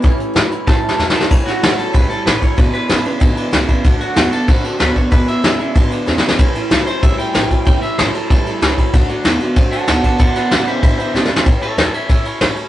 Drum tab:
CC |------------------------|x-----------------------|------------------------|------------------------|
RD |------------------------|---x--x--x--x--x--x--x--|x--x--x--x--x--x--x--x--|x--x--x--x--x--x--x--x--|
HH |x--x--x--x--------------|------------------------|------------------------|------------------------|
SD |------o-----o---o-o-o-o-|---o--o-----------o-----|------o-----------o-----|------o-----------o-----|
BD |o-----------o-----------|o-----------o--------o--|o-----------o--------o--|o-----------o--------o--|

CC |------------------------|------------------------|------------------------|------------------------|
RD |x--x--x--x--x--x--------|x--x--x--x--x--x--x--x--|x--x--x--x--x--x--x--x--|x--x--x--x--x--x--x--x--|
HH |------------------------|------------------------|------------------------|------------------------|
SD |------o-----------o-o-o-|------o-----------o-----|------o-----------o-----|------o-----------o-----|
BD |o-----------o-----------|o-----------o--------o--|o-----------o--------o--|o-----------o--------o--|

CC |------------------------|------------------------|
RD |x--x--x--x--x--x--------|x--x--x--x--x--x--x--x--|
HH |------------------------|------------------------|
SD |---o--o-----------o-o-o-|------o-----o-----o-----|
BD |o-----------o-----------|o-----------o-----------|